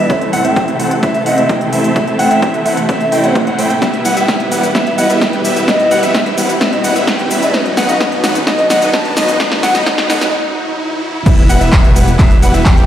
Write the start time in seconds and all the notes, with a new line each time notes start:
Already playing: E3 A4 E5, riser
0.10 A1 C3 A3 C4 E4 C5 E5, kick, closed hi-hat
0.21 closed hi-hat
0.33 A1 A3 C4 E4 C5 F#5, open hi-hat
0.45 A1 A3 C4 E4 C5 E5 G5, closed hi-hat
0.56 A1 A3 C4 E4 C5 E5, kick, closed hi-hat
0.68 closed hi-hat
0.80 A1 A3 C4 E4 C5 F#5, open hi-hat
0.91 closed hi-hat
1.03 A1 A3 C4 E4 C5 E5, kick, closed hi-hat
1.14 E5, closed hi-hat
1.26 A1 A3 C4 E4 C5 D#5 F#5, open hi-hat
1.38 A1 A3 C4 E4 C5 E5, closed hi-hat
1.49 A1 A3 C4 E4 C5 G5, kick, closed hi-hat
1.61 closed hi-hat
1.73 A1 A3 C4 E4 C5 E5, open hi-hat
1.84 closed hi-hat
1.96 A1 A3 E4 C5 E5, kick, closed hi-hat
2.07 closed hi-hat
2.19 A1 A3 C4 E4 C5 F#5 G5, open hi-hat
2.31 A1 A3 C4 E4 C5 E5, closed hi-hat
2.42 A1 A3 C4 E4 C5 E5, kick, closed hi-hat
2.54 closed hi-hat
2.65 A1 A3 C4 E4 C5 E5 F#5, open hi-hat
2.77 E5, closed hi-hat
2.89 A1 A3 C4 E4 C5 E5, kick, closed hi-hat
3.00 E5, closed hi-hat
3.12 A1 A3 C4 E4 C5 G5, open hi-hat
3.24 A1 A3 C4 E4 C5 F#5, closed hi-hat
3.35 kick, closed hi-hat
3.47 A2 A3 C4 E4 C5 F#5, closed hi-hat
3.59 A2 A3 C4 E4 C5 G5, open hi-hat
3.70 closed hi-hat
3.82 E1 B2 E3 G3 B3 E4 G4 B4 E5, kick, snare, closed hi-hat, shaker
3.94 closed hi-hat
4.05 E1 G3 B3 E4 B4 F#5, open hi-hat, shaker
4.17 E1 G3 B3 E4 B4 E5 G5, closed hi-hat, shaker
4.28 E1 G3 B3 E4 B4 E5, kick, snare, closed hi-hat, shaker
4.40 closed hi-hat
4.52 E1 G3 B3 E4 B4 F#5, open hi-hat, shaker
4.63 closed hi-hat, shaker
4.75 E1 G3 B3 E4 B4 E5, kick, snare, closed hi-hat, shaker
4.87 E5, closed hi-hat
4.98 E1 G3 B3 E4 B4 D#5 F#5, open hi-hat, shaker
5.10 E1 G3 B3 E4 B4 E5, closed hi-hat, shaker
5.21 E1 G3 B3 E4 B4 G5, kick, snare, closed hi-hat, shaker
5.33 closed hi-hat
5.45 E1 G3 B3 E4 B4 E5, open hi-hat, shaker
5.56 closed hi-hat, shaker
5.68 E1 G3 B3 E4 B4 D#5 E5, kick, snare, closed hi-hat, shaker
5.80 closed hi-hat
5.91 E1 G3 B3 E4 B4 F#5, open hi-hat, shaker
6.03 E1 G3 B3 E4 B4 E5, closed hi-hat, shaker
6.14 E1 G3 B3 E4 B4 E5, kick, snare, closed hi-hat, shaker
6.26 closed hi-hat
6.38 E1 G3 B3 E4 B4 F#5, open hi-hat, shaker
6.49 closed hi-hat, shaker
6.61 E1 G3 B3 E4 B4 E5, kick, snare, closed hi-hat, shaker
6.72 D#5, closed hi-hat
6.84 E1 G3 B3 E4 B4 F#5, open hi-hat, shaker
6.96 E1 G3 B3 E4 B4 E5, closed hi-hat, shaker
7.07 E2 G3 B3 E4 B4, kick, snare, closed hi-hat, shaker
7.19 closed hi-hat
7.31 E2 G3 B3 E4 B4 E5, open hi-hat, shaker
7.42 closed hi-hat, shaker
7.54 B1 D#3 F#3 B3 D#4 F#4 B4 D#5, kick, snare, closed hi-hat, shaker
7.66 closed hi-hat
7.77 B1 F#3 B3 D#4 B4 F#5, snare, open hi-hat, shaker
7.89 B1 F#3 B3 D#4 B4 D#5 F#5, closed hi-hat, shaker
8.00 B1 F#3 B3 D#4 B4 D#5, kick, snare, closed hi-hat, shaker
8.12 closed hi-hat
8.24 B1 F#3 B3 D#4 B4 F#5, snare, open hi-hat, shaker
8.35 closed hi-hat, shaker
8.47 B1 F#3 B3 D#4 B4 D#5, kick, snare, closed hi-hat, shaker
8.59 D#5, closed hi-hat
8.70 B1 F#3 B3 D#4 B4 D#5 F#5, snare, open hi-hat, shaker
8.82 B1 F#3 B3 D#4 B4 D#5, closed hi-hat, shaker
8.93 B1 F#3 B3 B4 A5, kick, snare, closed hi-hat, shaker
9.05 closed hi-hat
9.17 B1 F#3 B3 D#4 B4 D#5, snare, open hi-hat, shaker
9.28 closed hi-hat, shaker
9.40 B1 F#3 B3 B4 D#5, kick, snare, closed hi-hat, shaker
9.52 snare, closed hi-hat
9.63 B1 F#3 B3 D#4 B4 F#5, snare, open hi-hat, shaker
9.75 B1 F#3 B3 D#4 B4 D#5, snare, closed hi-hat, shaker
9.86 B1 F#3 B3 D#4 B4 D#5, kick, snare, closed hi-hat, shaker
9.98 snare, closed hi-hat
10.10 B1 F#3 B3 D#4 B4 D#5 F#5, snare, open hi-hat, shaker
10.21 D#5, snare, closed hi-hat, shaker
11.26 E1 B2 E3 G3 B3 E4 G4 B4 E5, kick, closed hi-hat, crash, shaker
11.38 closed hi-hat
11.49 E1 G3 B3 E4 B4 F#5, open hi-hat, shaker
11.61 E1 G3 B3 E4 B4 E5, closed hi-hat, shaker
11.73 E1 G3 B3 E4 B4 E5, kick, clap, closed hi-hat, shaker
11.84 closed hi-hat
11.96 E1 G3 B3 E4 B4 F#5, open hi-hat, shaker
12.08 closed hi-hat, shaker
12.19 E1 G3 B3 E4 B4 E5, kick, clap, closed hi-hat, shaker
12.31 closed hi-hat
12.42 E1 G3 B3 E4 B4 F#5, open hi-hat, shaker
12.54 E1 G3 B3 E4 B4 E5, closed hi-hat, shaker
12.66 E1 G3 B3 E4 B4 G5, kick, clap, closed hi-hat, shaker
12.77 closed hi-hat